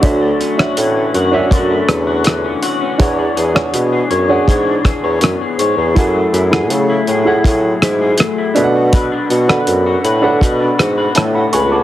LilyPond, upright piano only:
\new Staff \with { instrumentName = "Upright piano" } { \time 4/4 \key b \dorian \tempo 4 = 81 << { fis''16 r2. r8. | r1 | r1 | r2. <e'' a''>16 <fis'' b''>16 <gis'' cis'''>16 <a'' d'''>16 | } \\ { <d' fis' cis'' e''>8 r16 <d' fis' cis'' e''>8 r8 <d' fis' cis'' e''>4~ <d' fis' cis'' e''>16 r4 | <d' gis' cis'' fis''>8 r16 <d' gis' cis'' fis''>8 r8 <d' gis' cis'' fis''>4~ <d' gis' cis'' fis''>16 r4 | <e' gis' a' fis''>8 r16 <e' gis' a' fis''>8 r8 <e' gis' a' fis''>4~ <e' gis' a' fis''>16 r8 <d' a' b' e'' fis''>8~ | <d' a' b' e'' fis''>8 r16 <d' a' b' fis''>8 r8 <d' a' b' fis''>4~ <d' a' b' fis''>16 r4 | } >> }